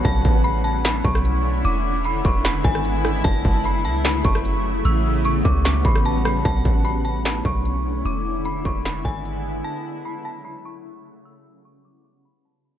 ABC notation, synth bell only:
X:1
M:4/4
L:1/8
Q:1/4=150
K:Bm
V:1 name="Synth bell"
a2 b a b c'3 | d'2 b c' b ^g3 | a2 b a b c'3 | e'2 c' d' c' b a b |
a2 b a b c'3 | d'2 b c' b ^g3 | a2 b a b c'3 | e'2 c' d' c' b a b |]